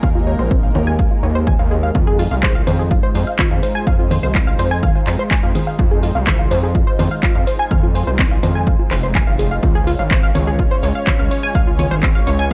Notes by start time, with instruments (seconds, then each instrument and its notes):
Already playing: analog synth pad G#3 A#3 D#4 A#4
0.03 analog synth bass D#2, synth arpeggio sound F5, kick, low conga
0.15 synth arpeggio sound F4
0.27 synth arpeggio sound C#5
0.39 analog synth bass A#1, synth arpeggio sound C5
0.51 synth arpeggio sound C4, kick
0.63 synth arpeggio sound F5
0.75 analog synth bass D#2, synth arpeggio sound C#5, low conga
0.87 synth arpeggio sound G#5
0.99 synth arpeggio sound F5, kick
1.11 synth arpeggio sound F4
1.23 analog synth bass D#2, synth arpeggio sound C#5
1.35 synth arpeggio sound C5
1.47 synth arpeggio sound G#5, kick, low conga
1.59 analog synth bass D#2, synth arpeggio sound F5
1.71 synth arpeggio sound G#4
1.83 synth arpeggio sound F5
1.95 analog synth bass F2, analog synth pad D#4 F4 C5, synth arpeggio sound F4, kick, low conga
2.07 synth arpeggio sound G#4
2.19 synth arpeggio sound F4, open hi-hat
2.31 analog synth bass C2, synth arpeggio sound F5
2.43 synth arpeggio sound C5, kick, clap
2.55 synth arpeggio sound F5
2.67 analog synth bass F2, synth arpeggio sound C5, open hi-hat, low conga
2.79 synth arpeggio sound G#4
2.91 synth arpeggio sound F4, kick
3.03 synth arpeggio sound C5
3.15 analog synth bass F2, synth arpeggio sound C5, open hi-hat
3.27 synth arpeggio sound F5
3.39 synth arpeggio sound F4, kick, clap, low conga
3.51 analog synth bass F2, synth arpeggio sound F5
3.63 synth arpeggio sound C5, open hi-hat
3.75 synth arpeggio sound G#5
3.87 analog synth bass F2, synth arpeggio sound F5, kick
3.99 synth arpeggio sound F4
4.11 synth arpeggio sound C5, open hi-hat, low conga
4.23 analog synth bass C2, synth arpeggio sound C5
4.35 synth arpeggio sound C4, kick, clap
4.47 synth arpeggio sound F5
4.59 analog synth bass F2, synth arpeggio sound C5, open hi-hat
4.71 synth arpeggio sound G#5
4.83 synth arpeggio sound F5, kick, low conga
4.95 synth arpeggio sound F4
5.07 analog synth bass F2, synth arpeggio sound C5, clap, open hi-hat
5.19 synth arpeggio sound C5
5.31 synth arpeggio sound G#5, kick, clap
5.43 analog synth bass F2, synth arpeggio sound F5
5.55 synth arpeggio sound G#4, open hi-hat, low conga
5.67 synth arpeggio sound F5
5.79 analog synth bass F2, synth arpeggio sound F4, kick
5.91 synth arpeggio sound G#4
6.03 synth arpeggio sound F4, open hi-hat
6.15 analog synth bass C2, synth arpeggio sound F5
6.27 synth arpeggio sound C5, kick, clap, low conga
6.39 synth arpeggio sound F5
6.51 analog synth bass F2, synth arpeggio sound C5, open hi-hat
6.63 synth arpeggio sound G#4
6.75 synth arpeggio sound F4, kick
6.87 synth arpeggio sound C5
6.99 analog synth bass F2, synth arpeggio sound C5, open hi-hat, low conga
7.11 synth arpeggio sound F5
7.23 synth arpeggio sound F4, kick, clap
7.35 analog synth bass F2, synth arpeggio sound F5
7.47 synth arpeggio sound C5, open hi-hat
7.59 synth arpeggio sound G#5
7.71 analog synth bass F2, synth arpeggio sound F5, kick, low conga
7.83 synth arpeggio sound F4
7.95 synth arpeggio sound C5, open hi-hat
8.07 analog synth bass C2, synth arpeggio sound C5
8.19 synth arpeggio sound C4, kick, clap
8.31 synth arpeggio sound F5
8.43 analog synth bass F2, synth arpeggio sound C5, open hi-hat, low conga
8.55 synth arpeggio sound G#5
8.67 synth arpeggio sound F5, kick
8.79 synth arpeggio sound F4
8.91 analog synth bass F1, synth arpeggio sound C5, clap, open hi-hat
9.03 synth arpeggio sound C5
9.15 synth arpeggio sound G#5, kick, clap, low conga
9.27 analog synth bass F1, synth arpeggio sound F5
9.39 synth arpeggio sound G#4, open hi-hat
9.51 synth arpeggio sound F5
9.63 analog synth bass C#2, analog synth pad G#3 C#4 C#5, synth arpeggio sound F4, kick, low conga
9.75 synth arpeggio sound G#4
9.87 synth arpeggio sound F4, open hi-hat
9.99 analog synth bass G#1, synth arpeggio sound F5
10.11 synth arpeggio sound C5, kick, clap
10.23 synth arpeggio sound F5
10.35 analog synth bass C#2, synth arpeggio sound C#5, open hi-hat, low conga
10.47 synth arpeggio sound G#4
10.59 synth arpeggio sound F4, kick
10.71 synth arpeggio sound C5
10.83 analog synth bass C#2, synth arpeggio sound C#5, open hi-hat
10.95 synth arpeggio sound F5
11.07 synth arpeggio sound F4, kick, clap, low conga
11.19 analog synth bass C#2, synth arpeggio sound F5
11.31 synth arpeggio sound C#5, open hi-hat
11.43 synth arpeggio sound G#5
11.55 analog synth bass C#2, synth arpeggio sound F5, kick
11.67 synth arpeggio sound F4
11.79 synth arpeggio sound C#5, open hi-hat, low conga
11.91 analog synth bass G#1, synth arpeggio sound C5
12.03 synth arpeggio sound C4, kick, clap
12.15 synth arpeggio sound F5
12.27 analog synth bass C#2, synth arpeggio sound C#5, open hi-hat
12.39 synth arpeggio sound G#5